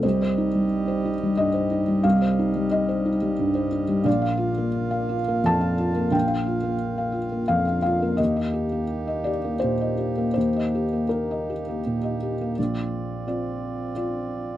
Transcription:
<<
  \new Staff \with { instrumentName = "Felt piano" } { \time 3/4 \key bes \major \tempo 4 = 88 << { c''2 ees''4 | f''4 ees''4. r8 | d''2 a''4 | g''2 f''8 f''8 |
ees''4. d''8 c''4 | c''4 bes'4 r4 | r2. | } \\ { c,16 c''16 ees'16 g8 c''16 ees'16 g16 g,16 c''16 ees'16 g16 | c,16 c''16 ees'16 g8 c''16 ees'16 g16 g,16 c''16 ees'16 g16 | bes,,16 f''16 f'16 bes8 f''16 f'16 bes16 f,16 f''16 f'16 bes16 | bes,,16 f''16 f'16 bes8 f''16 f'16 bes16 f,16 f''16 f'16 bes16 |
ees,16 ees''16 g'16 bes8 ees''16 g'16 bes16 bes,16 ees''16 g'16 bes16 | ees,16 ees''16 g'16 bes8 ees''16 g'16 bes16 bes,16 ees''16 g'16 bes16 | bes,,4 <c' f' d''>4 <c' f' d''>4 | } >> }
  \new Staff \with { instrumentName = "Harmonium" } { \time 3/4 \key bes \major <g g' ees''>2.~ | <g g' ees''>2. | <bes f' f''>2.~ | <bes f' f''>2. |
<bes ees' g'>2.~ | <bes ees' g'>2. | <c' f' d''>2. | }
>>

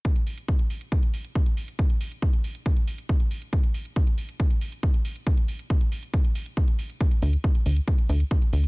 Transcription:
<<
  \new Staff \with { instrumentName = "Analog synth bass" } { \clef bass \time 4/4 \key c \mixolydian \tempo 4 = 138 r1 | r1 | r1 | r1 |
r8 d,8 r8 d,8 r8 d,8 r8 d,8 | }
  \new DrumStaff \with { instrumentName = "Drums" } \drummode { \time 4/4 <hh bd>16 hh16 hho16 hh16 <hh bd>16 hh16 hho16 hh16 <hh bd>16 hh16 hho16 hh16 <hh bd>16 hh16 hho16 hh16 | <hh bd>16 hh16 hho16 hh16 <hh bd>16 hh16 hho16 hh16 <hh bd>16 hh16 hho16 hh16 <hh bd>16 hh16 hho16 hh16 | <hh bd>16 hh16 hho16 hh16 <hh bd>16 hh16 hho16 hh16 <hh bd>16 hh16 hho16 hh16 <hh bd>16 hh16 hho16 hh16 | <hh bd>16 hh16 hho16 hh16 <hh bd>16 hh16 hho16 hh16 <hh bd>16 hh16 hho16 hh16 <hh bd>16 hh16 hho16 hh16 |
<hh bd>16 hh16 hho16 hh16 <hh bd>16 hh16 hho16 hh16 <hh bd>16 hh16 hho16 hh16 <hh bd>16 hh16 hho16 hh16 | }
>>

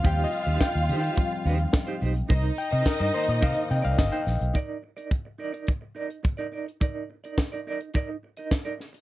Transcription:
<<
  \new Staff \with { instrumentName = "Reed electric piano" } { \time 4/4 \key bes \mixolydian \tempo 4 = 106 \tuplet 3/2 { g''8 ees''8 f''8 g''4 g''8~ } g''16 r4. r16 | r8 g''16 ees''16 bes'8 c''16 ees''16 f''8 g''16 f''16 ees''16 g''8. | r1 | r1 | }
  \new Staff \with { instrumentName = "Reed electric piano" } { \clef bass \time 4/4 \key bes \mixolydian <f g c'>4 r4 <f g c'>8 r4. | r4. <ees bes ees'>4. r4 | r1 | r1 | }
  \new Staff \with { instrumentName = "Clean electric guitar" } { \time 4/4 \key bes \mixolydian <ees' g' c''>8 r16 <ees' g' c''>16 r8 <ees' g' c''>16 <ees' g' c''>16 r8 <ees' g' c''>16 r8 <ees' g' c''>16 <ees' g' c''>16 r16 | <ees' bes' c''>8 r16 <ees' bes' c''>16 r16 <ees' bes' c''>16 <ees' bes' c''>16 r16 <ees' bes' c''>16 r8 <ees' bes' d''>16 r16 <ees' bes' c''>16 r8 | <ees' bes' d''>8 r16 <ees' bes' d''>16 r8 <ees' bes' d''>16 <ees' bes' d''>16 r8 <ees' bes' d''>16 r8 <ees' bes' d''>16 <ees' bes' d''>16 r16 | <ees' bes' d''>8 r16 <ees' bes' d''>16 r16 <ees' bes' d''>16 <ees' bes' d''>16 r16 <ees' bes' d''>16 r8 <ees' bes' ees''>16 r16 <ees' bes' d''>16 r8 | }
  \new Staff \with { instrumentName = "String section" } { \time 4/4 \key bes \mixolydian <f' f''>2.~ <f' f''>8 r8 | <ees' ees''>2.~ <ees' ees''>8 r8 | r1 | r1 | }
  \new Staff \with { instrumentName = "Fingered electric bass" } { \clef bass \time 4/4 \key bes \mixolydian ees,8 r16 ees,16 r16 ees,16 ees8 r8 ees,8 r8 b,,8 | c,8 r16 c16 r16 g,16 r16 bes,16 c16 r16 c16 c,16 g,,16 r16 bes,,16 b,,16 | r1 | r1 | }
  \new DrumStaff \with { instrumentName = "Drums" } \drummode { \time 4/4 <hh bd>8 hho16 hh16 <hh bd sn>8 hho16 hh16 <hh bd>8 hho16 hh16 <hh bd sn>8 hho16 hh16 | <hh bd>8 hho16 hh16 <hh bd sn>8 hho16 hh16 <hh bd>8 hho16 hh16 <hh bd sn>8 <hho sn>16 hh16 | <hh bd>8. hh16 <hh bd>8. hh16 <hh bd>8. hh16 <hh bd>8. hh16 | <hh bd>8. hh16 <hh bd sn>8. hh16 <hh bd>8. hh16 <hh bd sn>8 sn16 hh16 | }
>>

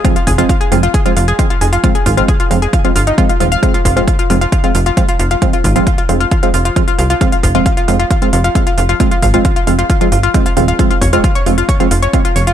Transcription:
<<
  \new Staff \with { instrumentName = "Synth arpeggio sound" } { \time 4/4 \key f \minor \tempo 4 = 134 f'16 f'16 aes'16 f'16 f'16 aes'16 f'16 f'16 aes'16 f'16 f'16 aes'16 f'16 f'16 aes'16 f'16 | f'16 aes'16 f'16 f'16 aes'16 f'16 f'16 aes'16 f'16 f'16 f'16 ees'16 f'16 f'16 f'16 f''16 | f'16 f'16 f'16 f'16 f'16 f'16 f'16 f'16 f'16 f'16 f'16 f'16 f'16 f'16 f'16 f'16 | f'16 f'16 f'16 f'16 f'16 f'16 f'16 f'16 f'16 f'16 f'16 f'16 f'16 f'16 f'16 f'16 |
f'16 f'16 f'16 f'16 f'16 f'16 f'16 f'16 f'16 f'16 f'16 f'16 f'16 f'16 f'16 f'16 | f'16 f'16 f'16 f'16 f'16 f'16 f'16 f'16 f'16 f'16 f'16 f'16 f'16 f'16 f'16 f'16 | f'16 f'16 des''16 f'16 f'16 des''16 f'16 f'16 des''16 f'16 f'16 des''16 f'16 f'16 des''16 f'16 | }
  \new Staff \with { instrumentName = "Synth stab" } { \clef bass \time 4/4 \key f \minor <f aes c'>16 r8 <f aes c'>16 r8 <f aes c'>16 r8 <f aes c'>16 r8 <f aes c'>16 r8. | <f aes c'>16 r8 <f aes c'>16 r8 <f aes c'>16 r8 <f aes c'>16 r8 <f aes c'>16 r16 <f aes c'>16 r16 | <f aes c'>16 r8 <f aes c'>16 r8 <f aes c'>16 r8 <f aes c'>16 r8 <f aes c'>16 r8. | <f aes c'>16 r8 <f aes c'>16 r8 <f aes c'>16 r8 <f aes c'>16 r8 <f aes c'>16 r8. |
<f aes c'>16 r8 <f aes c'>16 r8 <f aes c'>16 r8 <f aes c'>16 r8 <f aes c'>16 r8. | <f aes c'>16 r8 <f aes c'>16 r8 <f aes c'>16 r8 <f aes c'>16 r8 <f aes c'>16 r16 <f aes c'>16 r16 | <f aes c'>16 r8 <f aes c'>16 r8 <f aes c'>16 r8 <f aes c'>16 r8 <f aes c'>16 r8. | }
  \new Staff \with { instrumentName = "Analog synth bass" } { \clef bass \time 4/4 \key f \minor r8 f,,8 r8 f,,8 r8 f,,8 r8 f,,8 | r8 aes,,8 r8 f,,8 r8 g,,8 r8 ees,,8 | r8 f,,8 r8 f,,8 r8 f,,8 r8 f,,8 | r8 aes,,8 r8 f,,8 r8 f,,8 r8 c,8 |
r8 f,,8 r8 f,,8 r8 f,,8 r8 f,,8 | r8 aes,,8 r8 f,,8 r8 g,,8 r8 ees,,8 | r8 f,,8 r8 f,,8 r8 f,,8 r8 f,,8 | }
  \new DrumStaff \with { instrumentName = "Drums" } \drummode { \time 4/4 <hh bd>16 hh16 <hho bd>16 hh16 <hh bd>16 hh16 hho16 hh16 <hh bd>16 hh16 hho16 hh16 <hh bd>16 hh16 hho16 hh16 | <hh bd>16 hh16 <hho bd>16 hh16 <hh bd>16 hh16 hho16 hh16 <hh bd>16 hh16 hho16 hh16 <hh bd>16 hh16 hho16 hh16 | <hh bd>16 hh16 <hho bd>16 hh16 <hh bd>16 hh16 hho16 hh16 <hh bd>16 hh16 hho16 hh16 <hh bd>16 hh16 hho16 hh16 | <hh bd>16 hh16 <hho bd>16 hh16 <hh bd>16 hh16 hho16 hh16 <hh bd>16 hh16 hho16 hh16 <hh bd>16 hh16 hho16 hh16 |
<hh bd>16 hh16 <hho bd>16 hh16 <hh bd>16 hh16 hho16 hh16 <hh bd>16 hh16 hho16 hh16 <hh bd>16 hh16 hho16 hh16 | <hh bd>16 hh16 <hho bd>16 hh16 <hh bd>16 hh16 hho16 hh16 <hh bd>16 hh16 hho16 hh16 <hh bd>16 hh16 hho16 hh16 | <hh bd>16 hh16 <hho bd>16 hh16 <hh bd>16 hh16 hho16 hh16 <hh bd>16 hh16 hho16 hh16 <hh bd>16 hh16 hho16 hh16 | }
>>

